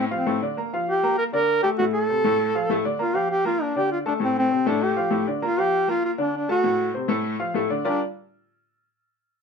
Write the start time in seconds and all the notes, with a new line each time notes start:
0.11 F3 C4 F4 F5
0.27 A2 A3 A4
0.41 D3 D4 D5
0.57 A#3 A#4 A#5
0.73 F3 F4 F5
0.89 G4
1.03 A#3 A#4 A#5
1.18 A#4
1.32 D3 D4 A#4 D5
1.63 A3 G4 A4 A5
1.78 A2 A3 F#4 A4
1.94 A4
2.09 C3 C4 C5
2.24 A2 A3 A4
2.55 F3 F4 F5
2.69 A2 A3 A4
2.85 D3 D4 D5
2.99 A#3 F4 A#4 A#5
3.14 F3 F4 G4 F5
3.31 G4
3.45 A#3 F4 A#4 A#5
3.62 D4
3.76 D3 D4 G4 D5
3.92 F4
4.06 A3 D4 A4 A5
4.20 A2 A3 C4 A4
4.38 C4
4.51 C3 C4 C5
4.66 A2 A3 D4 A4
4.83 G4
4.96 F3 F4 F5
5.11 A2 A3 A4
5.27 D3 D4 D5
5.42 A#3 F4 A#4 A#5
5.57 F3 F4 G4 F5
5.88 A#3 F4 A#4 A#5
6.05 F4
6.18 D3 D4 D5
6.37 D4
6.49 A3 F#4 A4 A5
6.64 A2 A3 A4
6.94 C3 C4 C5
7.08 A2 A3 A4
7.39 F3 F4 F5
7.54 A2 A3 A4
7.70 D3 D4 D5
7.84 G3 D4 F4 G4 A#4 D5